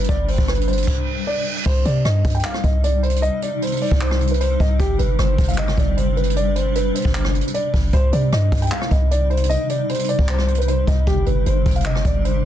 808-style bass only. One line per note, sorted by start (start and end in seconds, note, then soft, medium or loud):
0.09 0.37 G1 loud
0.38 0.85 G1 loud
1.66 1.85 C2 loud
1.85 2.04 C3 loud
2.05 2.24 G2 loud
2.25 2.44 G2 loud
2.64 3.30 C2 loud
3.91 4.57 C2 loud
4.60 4.79 C2 loud
4.80 4.98 G1 loud
4.99 5.18 G1 loud
5.19 5.38 G1 loud
5.38 5.76 G1 loud
5.78 6.91 G1 loud
7.05 7.43 G1 loud
7.74 7.92 G1 loud
7.93 8.12 C2 loud
8.13 8.32 C3 loud
8.32 8.51 G2 loud
8.52 8.71 G2 loud
8.91 9.57 C2 loud
10.19 10.85 C2 loud
10.87 11.06 C2 loud
11.07 11.26 G1 loud
11.27 11.45 G1 loud
11.46 11.65 G1 loud
11.66 12.04 G1 loud
12.05 12.45 G1 loud